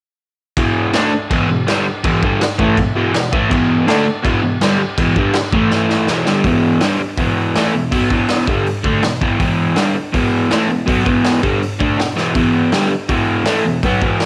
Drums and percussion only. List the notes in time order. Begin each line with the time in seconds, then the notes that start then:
0.57 kick, crash
0.93 snare, crash
1.05 snare
1.31 kick, crash
1.68 snare, crash
2.04 kick, crash
2.23 kick
2.41 snare, crash
2.59 kick
2.77 kick, crash
3.14 snare, crash
3.33 kick
3.51 kick, crash
3.88 snare, crash
4.25 kick, crash
4.61 snare, crash
4.98 kick, crash
5.16 kick
5.33 snare, crash
5.44 snare
5.52 kick
5.70 snare
5.90 snare
6.07 snare
6.26 snare
6.44 kick, open hi-hat
6.80 snare, open hi-hat
7.17 kick, open hi-hat
7.55 snare, open hi-hat
7.92 kick, open hi-hat
8.10 kick
8.28 snare, open hi-hat
8.47 kick
8.66 open hi-hat
8.84 kick
9.03 snare, open hi-hat
9.22 kick
9.40 kick, open hi-hat
9.76 snare, open hi-hat
10.14 kick, open hi-hat
10.51 snare, open hi-hat
10.88 kick, open hi-hat
11.06 kick
11.24 snare, open hi-hat
11.43 kick
11.62 open hi-hat
11.80 kick
11.99 snare, open hi-hat
12.17 snare
12.35 kick, open hi-hat
12.72 snare, open hi-hat
13.09 kick, open hi-hat
13.45 snare, open hi-hat
13.83 kick, open hi-hat
14.02 kick
14.20 snare, open hi-hat